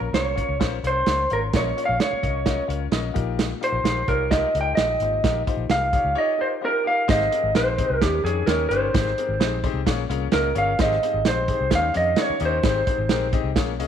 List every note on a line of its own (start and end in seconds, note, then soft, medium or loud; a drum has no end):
0.00 0.11 A#1 medium
0.00 0.34 A#2 medium
0.13 0.41 C2 medium
0.13 0.30 C#4 medium
0.13 0.30 F4 medium
0.13 0.30 A#4 medium
0.13 0.30 C#5 medium
0.13 0.58 C#5 medium
0.13 snare loud
0.13 closed hi-hat medium
0.35 0.52 C#4 medium
0.35 0.52 F4 medium
0.35 0.53 A#4 medium
0.35 0.52 C#5 medium
0.35 kick medium
0.35 closed hi-hat medium
0.49 0.60 C#2 medium
0.60 0.78 A#1 medium
0.60 0.76 C#4 medium
0.60 0.76 F4 medium
0.60 0.76 A#4 medium
0.60 0.76 C5 loud
0.60 kick medium
0.60 snare loud
0.60 closed hi-hat medium
0.84 1.02 C2 medium
0.84 1.00 C#4 medium
0.84 1.00 F4 medium
0.84 1.00 A#4 medium
0.84 1.33 C5 medium
0.84 1.00 C#5 medium
0.84 closed hi-hat medium
1.06 1.25 C#2 loud
1.06 1.23 C#4 medium
1.06 1.23 F4 medium
1.06 1.23 A#4 medium
1.06 1.23 C#5 medium
1.06 snare loud
1.06 closed hi-hat medium
1.30 1.49 G#1 medium
1.30 1.46 C#4 medium
1.30 1.46 F4 medium
1.30 1.47 A#4 medium
1.30 1.39 A#4 medium
1.30 1.47 C#5 medium
1.30 closed hi-hat medium
1.53 1.71 A#1 loud
1.53 2.19 A#2 medium
1.53 1.69 C#4 loud
1.53 1.69 F4 medium
1.53 1.69 A#4 medium
1.53 1.85 C#5 loud
1.53 1.69 D#5 loud
1.53 kick loud
1.53 snare loud
1.53 closed hi-hat loud
1.77 1.93 C#4 medium
1.77 1.92 F4 medium
1.77 1.93 A#4 medium
1.77 1.93 C#5 medium
1.77 closed hi-hat medium
1.85 1.98 A#1 loud
1.85 2.01 F5 loud
1.99 2.15 C#4 medium
1.99 2.16 F4 medium
1.99 2.16 A#4 medium
1.99 2.16 C#5 medium
1.99 2.66 C#5 medium
1.99 snare loud
1.99 closed hi-hat medium
2.13 muted fingered electric bass stroke soft
2.23 2.59 C2 medium
2.23 2.39 C#4 medium
2.23 2.39 F4 medium
2.23 2.39 A#4 medium
2.23 2.39 D#5 medium
2.23 kick medium
2.23 closed hi-hat medium
2.46 2.62 C#4 loud
2.46 2.62 F4 medium
2.46 2.62 A#4 medium
2.46 2.62 D#5 loud
2.46 kick loud
2.46 snare loud
2.46 closed hi-hat medium
2.68 2.87 C#2 medium
2.68 2.85 C#4 medium
2.68 2.84 F4 medium
2.68 2.85 A#4 medium
2.68 2.85 C#5 medium
2.68 closed hi-hat medium
2.91 3.10 A#1 loud
2.91 3.08 C#4 medium
2.91 3.08 F4 medium
2.91 3.08 A#4 medium
2.91 3.08 D#5 medium
2.91 3.35 F5 medium
2.91 snare loud
2.91 closed hi-hat medium
3.14 3.52 A#1 medium
3.14 3.81 A#2 medium
3.14 3.52 D#4 medium
3.14 3.52 F4 medium
3.14 3.52 G4 medium
3.14 3.52 A#4 medium
3.14 kick loud
3.14 closed hi-hat medium
3.39 snare loud
3.39 closed hi-hat loud
3.61 3.77 D#4 medium
3.61 3.77 F4 medium
3.61 3.77 G4 medium
3.61 3.78 A#4 medium
3.61 4.11 C5 loud
3.61 closed hi-hat medium
3.72 3.82 A#1 medium
3.84 4.02 A#1 medium
3.84 4.00 D#4 medium
3.84 4.01 F4 medium
3.84 4.00 G4 medium
3.84 4.01 A#4 medium
3.84 snare loud
3.84 closed hi-hat medium
4.08 4.44 C2 medium
4.08 4.24 D#4 medium
4.08 4.24 F4 medium
4.08 4.24 G4 medium
4.08 4.32 A#4 medium
4.08 4.24 C#5 medium
4.08 kick medium
4.08 closed hi-hat medium
4.31 4.47 D#4 loud
4.31 4.47 F4 medium
4.31 4.48 G4 medium
4.31 4.48 A#4 loud
4.31 4.60 D#5 loud
4.31 kick medium
4.31 snare loud
4.31 closed hi-hat loud
4.54 4.73 C#2 medium
4.54 4.70 D#4 medium
4.54 4.71 F4 medium
4.54 4.71 G4 medium
4.54 4.71 A#4 medium
4.54 closed hi-hat medium
4.61 4.75 G5 loud
4.75 4.96 A#1 medium
4.75 4.94 D#4 medium
4.75 4.94 F4 medium
4.75 4.94 G4 medium
4.75 4.94 A#4 medium
4.75 5.42 D#5 medium
4.75 snare loud
4.75 closed hi-hat medium
5.00 5.19 G#1 medium
5.00 5.67 A#2 medium
5.00 5.17 D#4 medium
5.00 5.17 F4 medium
5.00 5.17 G4 medium
5.00 5.18 C5 medium
5.00 closed hi-hat medium
5.24 5.42 A#1 loud
5.24 5.40 D#4 medium
5.24 5.40 F4 medium
5.24 5.40 G4 medium
5.24 5.40 A#4 loud
5.24 kick loud
5.24 snare loud
5.24 closed hi-hat loud
5.47 5.63 D#4 medium
5.47 5.63 F4 medium
5.47 5.63 G4 medium
5.47 5.64 C5 medium
5.47 kick loud
5.47 closed hi-hat medium
5.57 5.67 A#1 medium
5.69 5.97 C2 medium
5.69 5.86 D#4 medium
5.69 5.86 F4 medium
5.69 5.86 G4 medium
5.69 5.86 A#4 medium
5.69 6.18 F5 loud
5.69 snare loud
5.69 closed hi-hat medium
5.93 6.10 D#4 medium
5.93 6.10 F4 medium
5.93 6.10 G4 medium
5.93 6.10 C#5 medium
5.93 kick medium
5.93 closed hi-hat medium
6.04 6.14 C#2 medium
6.15 6.32 D#4 loud
6.15 6.32 F4 medium
6.15 6.32 G4 medium
6.15 6.32 C#5 loud
6.15 6.42 D#5 loud
6.38 6.55 D#4 medium
6.38 6.55 F4 medium
6.38 6.55 G4 medium
6.38 6.55 A#4 medium
6.38 6.47 C5 medium
6.61 6.78 D#4 medium
6.61 6.78 F4 medium
6.61 6.78 G4 medium
6.61 6.86 A#4 loud
6.61 6.78 C5 medium
6.84 7.01 D#4 medium
6.84 7.01 F4 medium
6.84 7.01 G4 medium
6.84 7.01 A#4 medium
6.84 7.10 F5 loud
7.08 7.27 G#1 loud
7.08 7.74 G#2 medium
7.08 7.24 C4 loud
7.08 7.25 D#4 medium
7.08 7.25 G4 medium
7.08 7.25 G#4 medium
7.08 7.25 C5 loud
7.08 7.53 D#5 loud
7.08 kick loud
7.08 snare loud
7.08 closed hi-hat loud
7.21 snare soft
7.31 7.48 C4 medium
7.31 7.48 D#4 medium
7.31 7.48 G4 medium
7.31 7.48 G#4 medium
7.31 7.48 A#4 medium
7.31 closed hi-hat medium
7.43 7.53 G#1 loud
7.55 7.83 A#1 medium
7.55 7.71 C4 medium
7.55 7.71 D#4 medium
7.55 7.71 G4 medium
7.55 7.71 G#4 medium
7.55 7.71 C5 medium
7.55 8.04 C5 loud
7.55 snare loud
7.55 closed hi-hat loud
7.78 7.94 C4 medium
7.78 7.94 D#4 medium
7.78 7.95 G4 medium
7.78 7.94 G#4 medium
7.78 7.95 D#5 medium
7.78 kick medium
7.78 closed hi-hat medium
7.90 7.99 C2 medium
8.01 8.20 D#2 loud
8.01 8.67 D#3 medium
8.01 8.17 C#4 medium
8.01 8.17 D#4 medium
8.01 8.17 G4 medium
8.01 8.24 G4 medium
8.01 8.18 A#4 medium
8.01 8.17 C#5 medium
8.01 kick loud
8.01 snare loud
8.01 closed hi-hat loud
8.24 8.42 F2 medium
8.24 8.40 C#4 medium
8.24 8.41 D#4 medium
8.24 8.41 G4 medium
8.24 8.49 G#4 medium
8.24 8.41 A#4 medium
8.24 8.41 C#5 medium
8.24 closed hi-hat medium
8.46 8.66 D#2 medium
8.46 8.65 C#4 medium
8.46 8.65 D#4 medium
8.46 8.65 G4 medium
8.46 8.68 A#4 medium
8.46 8.65 A#4 medium
8.46 8.65 C#5 loud
8.46 snare loud
8.46 closed hi-hat medium
8.69 8.89 G1 medium
8.69 8.87 C#4 medium
8.69 8.87 D#4 medium
8.69 8.87 G4 medium
8.69 8.87 A#4 medium
8.69 9.58 C5 medium
8.69 8.87 C#5 loud
8.69 closed hi-hat medium
8.94 9.12 G#1 loud
8.94 9.60 G#2 medium
8.94 9.10 C4 loud
8.94 9.10 D#4 medium
8.94 9.10 G4 loud
8.94 9.10 G#4 medium
8.94 9.10 C5 loud
8.94 kick loud
8.94 snare loud
8.94 closed hi-hat loud
9.07 snare soft
9.18 9.34 C4 medium
9.18 9.34 D#4 medium
9.18 9.34 G4 medium
9.18 9.33 G#4 medium
9.18 9.34 A#4 medium
9.18 closed hi-hat medium
9.28 9.38 G#1 loud
9.40 9.67 A#1 loud
9.40 9.56 C4 medium
9.40 9.56 D#4 medium
9.40 9.56 G4 medium
9.40 9.56 G#4 medium
9.40 9.56 C5 medium
9.40 snare loud
9.40 closed hi-hat medium
9.64 9.79 C4 loud
9.64 9.79 D#4 medium
9.64 9.80 G4 medium
9.64 9.80 G#4 medium
9.64 9.80 C5 loud
9.64 kick loud
9.64 closed hi-hat medium
9.74 9.87 C2 loud
9.86 10.05 A#1 loud
9.86 10.52 A#2 medium
9.86 10.02 C#4 loud
9.86 10.02 F4 medium
9.86 10.02 G#4 medium
9.86 10.02 A#4 medium
9.86 10.02 C#5 loud
9.86 kick loud
9.86 snare loud
9.86 closed hi-hat loud
10.10 10.28 C2 loud
10.10 10.25 C#4 loud
10.10 10.26 F4 medium
10.10 10.26 G#4 medium
10.10 10.25 A#4 medium
10.10 10.26 C#5 loud
10.10 closed hi-hat medium
10.32 10.51 C#2 medium
10.32 10.48 C#4 loud
10.32 10.48 F4 medium
10.32 10.48 G#4 medium
10.32 10.48 A#4 medium
10.32 10.55 A#4 loud
10.32 10.48 D#5 loud
10.32 snare loud
10.32 closed hi-hat medium
10.55 10.74 G1 loud
10.55 10.71 C#4 medium
10.55 10.71 F4 medium
10.55 10.71 G#4 medium
10.55 10.71 A#4 medium
10.55 10.71 C#5 loud
10.55 10.81 F5 loud
10.55 closed hi-hat medium
10.79 10.97 G#1 loud
10.79 11.45 G#2 medium
10.79 10.95 C4 loud
10.79 10.95 D#4 medium
10.79 10.95 G4 loud
10.79 10.95 G#4 medium
10.79 10.95 C5 loud
10.79 11.28 D#5 loud
10.79 kick loud
10.79 snare loud
10.79 closed hi-hat loud
10.92 snare soft
11.03 11.18 C4 medium
11.03 11.18 D#4 medium
11.03 11.18 G4 medium
11.03 11.18 G#4 medium
11.03 11.18 C5 medium
11.03 closed hi-hat medium
11.14 11.23 G#1 medium
11.25 11.53 A#1 medium
11.25 11.41 C4 medium
11.25 11.41 D#4 medium
11.25 11.41 G4 medium
11.25 11.41 G#4 medium
11.25 11.42 C5 medium
11.25 11.70 C5 loud
11.25 snare loud
11.25 closed hi-hat loud
11.48 11.64 C4 medium
11.48 11.64 D#4 medium
11.48 11.64 G4 medium
11.48 11.64 G#4 medium
11.48 11.64 C5 medium
11.48 kick medium
11.48 closed hi-hat medium
11.61 11.69 C2 medium
11.70 11.89 D#2 loud
11.70 12.36 D#3 medium
11.70 11.87 C#4 medium
11.70 11.87 D#4 medium
11.70 11.87 G4 medium
11.70 11.87 A#4 medium
11.70 11.87 C#5 medium
11.70 kick loud
11.70 snare loud
11.70 closed hi-hat loud
11.75 11.97 F5 loud
11.94 12.13 F2 loud
11.94 12.10 C#4 medium
11.94 12.10 D#4 medium
11.94 12.10 G4 medium
11.94 12.10 A#4 medium
11.94 12.10 C#5 medium
11.94 12.17 D#5 loud
11.94 closed hi-hat medium
12.16 12.33 C#4 medium
12.16 12.33 D#4 medium
12.16 12.33 G4 medium
12.16 12.33 A#4 medium
12.16 12.34 C#5 loud
12.16 snare loud
12.16 closed hi-hat medium
12.22 12.41 C#5 medium
12.30 muted fingered electric bass stroke soft
12.40 12.59 D#2 loud
12.40 12.56 C#4 loud
12.40 12.56 D#4 medium
12.40 12.57 G4 medium
12.40 12.56 A#4 medium
12.40 12.56 D#5 loud
12.40 closed hi-hat medium
12.45 13.31 C5 medium
12.63 12.82 G#1 loud
12.63 13.29 G#2 medium
12.63 12.80 C4 loud
12.63 12.80 D#4 medium
12.63 12.80 G4 medium
12.63 12.80 G#4 medium
12.63 12.80 C5 loud
12.63 kick loud
12.63 snare loud
12.63 closed hi-hat loud
12.87 13.03 C4 medium
12.87 13.03 D#4 medium
12.87 13.03 G4 medium
12.87 13.03 G#4 medium
12.87 13.03 C5 medium
12.87 kick loud
12.87 closed hi-hat medium
12.98 13.09 G#1 medium
13.09 13.36 A#1 medium
13.09 13.26 C4 medium
13.09 13.26 D#4 medium
13.09 13.26 G4 medium
13.09 13.26 G#4 medium
13.09 13.26 A#4 loud
13.09 snare loud
13.09 closed hi-hat medium
13.33 13.49 C4 medium
13.33 13.49 D#4 medium
13.33 13.49 G4 medium
13.33 13.49 G#4 medium
13.33 13.49 D#5 loud
13.33 kick medium
13.33 closed hi-hat medium
13.44 13.56 C2 medium
13.56 13.79 A#1 loud
13.56 13.87 A#2 medium
13.56 13.72 C#4 medium
13.56 13.72 F4 medium
13.56 13.72 G#4 medium
13.56 13.72 A#4 medium
13.56 13.72 C#5 loud
13.56 kick loud
13.56 snare loud
13.56 closed hi-hat loud
13.79 13.87 C2 loud
13.79 13.87 C#4 medium
13.79 13.87 F4 medium
13.79 13.87 G#4 medium
13.79 13.87 A#4 medium
13.79 13.87 D#5 loud
13.79 closed hi-hat medium